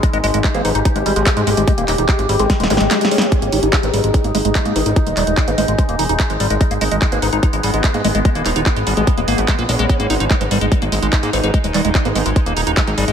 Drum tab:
HH |x--x--o--x-----x--o--x--x--x--o--x--x--x--o--x--|x--x--o--x--x--x--o--x--x--x--o--x--x--x--o--x--|x--x--o--x-----x--o--x--x--x--o--x--x--x--o--x--|x--x--o--x-----x--o--x--x--x--o--x--x--x--o--x--|
CP |------------x-----------------------x-----------|------x-----x-----------------------x-----------|------------x-----------------------x-----------|------x-----x-----------------------x-----------|
SD |------------------------------------------------|------------------------o---o---o---o---o---o---|------------------------------------------------|------------------------------------------------|
BD |o-----------o-----------o-----------o-----------|o-----------o-----------o-----------------------|o-----------o-----------o-----------o-----------|o-----------o-----------o-----------o-----------|

HH |x--x--o--x-----x--o--x--x--x--o--x--x--x--o--x--|x--x--o--x-----x--o--x--x--x--o--x--x--x--o--x--|x--x--o--x-----x--o--x--x--x--o--x--x--x--o--x--|x--x--o--x-----x--o--x--x--x--o--x--x--x--o--x--|
CP |------------x-----------------------x-----------|------x-----x-----------------------x-----------|------------x-----------------------x-----------|------x-----x-----------------------x-----------|
SD |------------------------------------------------|------------------------------------------------|------------------------------------------------|------------------------------------------------|
BD |o-----------o-----------o-----------o-----------|o-----------o-----------o-----------o-----------|o-----------o-----------o-----------o-----------|o-----------o-----------o-----------o-----------|